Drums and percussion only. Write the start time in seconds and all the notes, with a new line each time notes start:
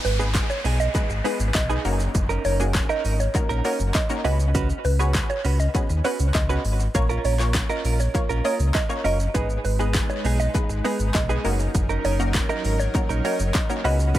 0.05 open hi-hat, shaker
0.20 shaker
0.35 kick, clap, closed hi-hat, shaker
0.50 shaker
0.65 open hi-hat, shaker
0.80 shaker
0.95 kick, clap, closed hi-hat, shaker
1.10 shaker
1.25 open hi-hat, shaker
1.40 shaker
1.55 kick, clap, closed hi-hat, shaker
1.70 shaker
1.85 open hi-hat, shaker
2.00 shaker
2.15 kick, closed hi-hat, shaker
2.30 shaker
2.45 open hi-hat, shaker
2.60 shaker
2.75 kick, clap, closed hi-hat, shaker
2.90 shaker
3.05 open hi-hat, shaker
3.20 shaker
3.35 kick, clap, closed hi-hat, shaker
3.50 shaker
3.65 open hi-hat, shaker
3.80 shaker
3.95 kick, clap, closed hi-hat, shaker
4.10 shaker
4.25 open hi-hat, shaker
4.40 shaker
4.55 kick, closed hi-hat, shaker
4.70 shaker
4.85 open hi-hat, shaker
5.00 shaker
5.15 kick, clap, closed hi-hat, shaker
5.30 shaker
5.45 open hi-hat, shaker
5.60 shaker
5.75 kick, clap, closed hi-hat, shaker
5.90 shaker
6.05 open hi-hat, shaker
6.20 shaker
6.35 kick, clap, closed hi-hat, shaker
6.50 shaker
6.65 open hi-hat, shaker
6.80 shaker
6.95 kick, closed hi-hat, shaker
7.10 shaker
7.25 open hi-hat, shaker
7.40 clap, shaker
7.55 kick, clap, closed hi-hat, shaker
7.70 shaker
7.85 open hi-hat, shaker
8.00 shaker
8.15 kick, clap, closed hi-hat, shaker
8.30 shaker
8.45 open hi-hat, shaker
8.60 shaker
8.75 kick, clap, closed hi-hat, shaker
8.90 shaker
9.05 open hi-hat, shaker
9.20 shaker
9.35 kick, closed hi-hat, shaker
9.50 shaker
9.65 open hi-hat, shaker
9.80 shaker
9.95 kick, clap, closed hi-hat, shaker
10.10 shaker
10.25 open hi-hat, shaker
10.40 shaker
10.55 kick, clap, closed hi-hat, shaker
10.70 shaker
10.85 open hi-hat, shaker
11.00 shaker
11.14 kick, clap, closed hi-hat, shaker
11.30 shaker
11.45 open hi-hat, shaker
11.60 shaker
11.75 kick, closed hi-hat, shaker
11.90 shaker
12.05 open hi-hat, shaker
12.20 shaker
12.35 kick, clap, closed hi-hat, shaker
12.50 shaker
12.65 open hi-hat, shaker
12.80 shaker
12.95 kick, clap, closed hi-hat, shaker
13.10 shaker
13.25 open hi-hat, shaker
13.40 shaker
13.55 kick, clap, closed hi-hat, shaker
13.70 shaker
13.85 open hi-hat, shaker
14.00 shaker
14.15 kick, closed hi-hat, shaker